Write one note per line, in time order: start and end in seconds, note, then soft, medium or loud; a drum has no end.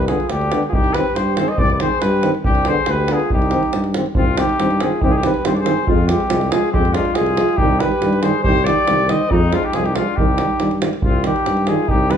0.00 0.10 C2 medium
0.07 0.17 D3 medium
0.07 0.17 B3 medium
0.07 0.33 F4 medium
0.07 0.30 G#4 medium
0.07 davul high medium
0.20 davul high soft
0.29 0.53 D2 medium
0.29 0.63 D4 medium
0.29 0.62 G4 medium
0.29 davul high medium
0.41 davul high soft
0.52 0.61 D3 medium
0.52 0.61 B3 medium
0.52 davul high medium
0.63 davul high soft
0.69 0.96 C2 medium
0.69 0.97 D#4 medium
0.69 0.74 F4 medium
0.69 0.75 G#4 medium
0.73 0.95 G4 loud
0.73 davul low medium
0.84 davul high soft
0.93 1.02 D#3 medium
0.93 1.05 C4 medium
0.93 1.20 G4 medium
0.93 1.17 B4 medium
0.93 davul high medium
1.15 1.39 G2 medium
1.15 1.35 C5 medium
1.15 davul high medium
1.20 1.39 G4 medium
1.35 1.46 D#3 medium
1.35 1.47 C4 medium
1.35 1.50 C5 medium
1.35 davul high medium
1.42 1.54 G#4 medium
1.48 1.60 D#5 medium
1.48 davul high soft
1.52 1.64 C5 medium
1.58 1.82 C2 medium
1.58 1.69 D5 loud
1.58 davul low medium
1.63 1.71 G4 medium
1.70 1.85 B4 medium
1.70 1.82 D5 medium
1.70 davul high soft
1.80 1.88 D#3 medium
1.80 1.90 C4 medium
1.80 2.00 C5 medium
1.80 davul high medium
1.84 2.03 G#4 medium
2.01 2.25 G2 medium
2.01 2.31 B4 medium
2.01 davul high medium
2.06 2.34 G4 medium
2.23 2.32 D#3 medium
2.23 2.32 C4 medium
2.23 davul high medium
2.35 davul high soft
2.44 2.68 C2 medium
2.44 2.70 D4 medium
2.44 2.69 G4 loud
2.44 davul low medium
2.55 davul high soft
2.65 2.76 D3 medium
2.65 2.77 B3 medium
2.65 2.92 G#4 medium
2.65 2.92 C5 medium
2.65 davul high medium
2.86 3.11 D2 medium
2.86 3.13 G4 medium
2.86 3.14 B4 medium
2.86 davul high medium
3.08 3.18 D3 medium
3.08 3.19 B3 medium
3.08 3.32 F4 medium
3.08 davul high medium
3.13 3.32 G#4 medium
3.20 davul high soft
3.30 3.55 C2 medium
3.30 3.92 D#4 medium
3.30 3.92 G4 medium
3.30 davul low medium
3.42 davul high soft
3.51 3.62 D#3 medium
3.51 3.61 C4 medium
3.51 davul high medium
3.63 davul high soft
3.73 3.98 G2 medium
3.73 davul high medium
3.84 davul high soft
3.94 4.04 D#3 medium
3.94 4.05 C4 medium
3.94 davul high medium
4.06 davul high soft
4.15 4.41 C2 medium
4.15 4.26 D#3 soft
4.15 4.25 C4 medium
4.15 4.39 C4 medium
4.15 4.40 F4 medium
4.15 davul low medium
4.38 4.49 D#3 medium
4.38 4.46 C4 medium
4.38 4.82 D#4 medium
4.38 4.83 G4 medium
4.38 davul high medium
4.49 davul high soft
4.60 4.83 G2 medium
4.60 4.69 D#3 soft
4.60 4.69 C4 medium
4.60 davul high medium
4.71 davul high soft
4.80 4.91 D#3 medium
4.80 4.91 C4 medium
4.80 5.02 F4 medium
4.80 5.04 G#4 medium
4.80 davul high medium
5.01 5.26 C2 medium
5.01 5.12 D#3 medium
5.01 5.12 C4 medium
5.01 5.10 D#4 medium
5.01 5.12 G4 medium
5.01 davul low medium
5.08 5.21 D#4 medium
5.08 5.12 F4 medium
5.08 5.15 G#4 medium
5.14 5.24 G4 medium
5.21 5.32 D#3 medium
5.21 5.33 C4 medium
5.21 5.44 G4 medium
5.21 5.47 B4 medium
5.21 davul high medium
5.34 davul high soft
5.44 5.69 G2 medium
5.44 5.54 D#3 medium
5.44 5.54 C4 medium
5.44 5.54 G4 medium
5.44 5.56 C5 medium
5.44 davul high medium
5.53 5.59 B4 medium
5.53 5.60 D5 medium
5.53 davul high soft
5.58 5.87 G#4 medium
5.58 5.89 C5 medium
5.65 5.74 D#3 medium
5.65 5.75 C4 medium
5.65 davul high medium
5.86 6.12 F2 loud
5.86 5.96 F3 medium
5.86 5.96 G#3 medium
5.86 6.07 C4 medium
5.86 6.09 F4 medium
5.86 davul low medium
6.07 6.17 F3 medium
6.07 6.52 C4 medium
6.07 6.52 G4 medium
6.07 davul high medium
6.12 6.20 G#3 medium
6.20 davul high soft
6.30 6.55 C2 medium
6.30 6.39 F3 medium
6.30 6.40 G#3 medium
6.30 davul high medium
6.41 davul high soft
6.50 6.60 F3 medium
6.50 6.61 G#3 medium
6.50 6.71 F4 medium
6.50 6.72 G#4 medium
6.50 davul high medium
6.71 6.97 F2 medium
6.71 6.82 F3 medium
6.71 6.82 G#3 medium
6.71 6.95 C4 medium
6.71 6.95 G4 medium
6.71 davul low medium
6.85 davul high soft
6.93 7.04 F3 medium
6.93 7.03 G#3 medium
6.93 7.16 D4 medium
6.93 7.17 F4 medium
6.93 davul high medium
7.05 davul high soft
7.14 7.40 C2 medium
7.14 7.23 G#3 soft
7.14 7.59 F4 medium
7.14 7.58 G#4 loud
7.14 davul high medium
7.18 7.26 F3 soft
7.26 davul high soft
7.37 7.47 F3 medium
7.37 7.46 G#3 medium
7.37 davul high medium
7.49 davul high soft
7.57 7.83 C2 loud
7.57 7.69 D#3 medium
7.57 7.68 G3 medium
7.57 7.81 D#4 medium
7.57 7.81 G4 loud
7.57 davul low medium
7.80 7.90 D#3 medium
7.80 7.90 G3 medium
7.80 8.22 G4 medium
7.80 8.24 B4 medium
7.80 davul high medium
7.92 davul high soft
8.02 8.26 G2 medium
8.02 8.12 D#3 medium
8.02 8.12 G3 medium
8.02 davul high medium
8.13 davul high soft
8.21 8.32 D#3 medium
8.21 8.32 G3 medium
8.21 8.43 G#4 medium
8.21 8.42 C5 medium
8.21 davul high medium
8.43 8.70 C2 loud
8.43 8.54 D#3 medium
8.43 8.53 G3 medium
8.43 8.65 G4 loud
8.43 8.66 C5 loud
8.43 davul low medium
8.65 8.76 D#3 medium
8.65 8.74 G3 medium
8.65 9.10 G4 medium
8.65 9.11 D5 loud
8.65 davul high medium
8.78 davul high soft
8.86 9.13 C2 medium
8.86 8.97 D#3 medium
8.86 8.95 G3 medium
8.86 davul high medium
8.99 davul high soft
9.08 9.18 D#3 medium
9.08 9.17 G3 medium
9.08 9.32 C5 medium
9.08 9.33 D#5 medium
9.08 davul high medium
9.30 9.56 F2 loud
9.30 9.40 F3 medium
9.30 9.40 G#3 medium
9.30 9.53 C4 medium
9.30 9.56 D#4 loud
9.30 davul low medium
9.51 9.62 F3 medium
9.51 9.62 G#3 medium
9.51 9.63 D4 medium
9.51 9.66 F4 medium
9.51 davul high medium
9.62 9.75 D#4 medium
9.62 9.76 G4 medium
9.62 davul high soft
9.73 9.99 C2 medium
9.73 9.84 F3 medium
9.73 9.82 G#3 medium
9.73 9.87 F4 medium
9.73 9.86 G#4 medium
9.73 davul high medium
9.84 9.97 D#4 medium
9.84 9.97 G4 medium
9.84 davul high soft
9.95 10.05 F3 medium
9.95 10.05 G#3 medium
9.95 10.19 D4 medium
9.95 10.18 F4 medium
9.95 davul high medium
10.16 10.42 C2 medium
10.16 10.27 D#3 medium
10.16 10.27 G3 medium
10.16 10.82 D#4 medium
10.16 10.82 G4 medium
10.16 davul low medium
10.38 10.48 D#3 medium
10.38 10.47 G3 medium
10.38 davul high medium
10.60 10.84 G2 medium
10.60 10.69 D#3 medium
10.60 10.69 G3 medium
10.60 davul high medium
10.71 davul high soft
10.81 10.90 D#3 medium
10.81 10.90 G3 medium
10.81 davul high medium
10.93 davul high soft
11.02 11.28 C2 medium
11.02 11.23 C4 medium
11.02 11.23 F4 medium
11.02 davul low medium
11.24 11.34 D#3 medium
11.24 11.34 G3 medium
11.24 11.69 D#4 medium
11.24 11.70 G4 medium
11.24 davul high medium
11.36 davul high soft
11.46 11.71 G2 medium
11.46 davul high medium
11.57 davul high soft
11.67 11.78 D#3 medium
11.67 11.77 G3 medium
11.67 11.89 F4 medium
11.67 11.91 G#4 medium
11.67 davul high medium
11.88 12.14 C2 loud
11.88 12.12 D#4 medium
11.88 12.12 G4 loud
11.88 davul low medium
12.10 12.17 D#3 medium
12.10 12.17 G3 medium
12.10 12.17 G4 medium
12.10 12.17 B4 medium
12.10 davul high medium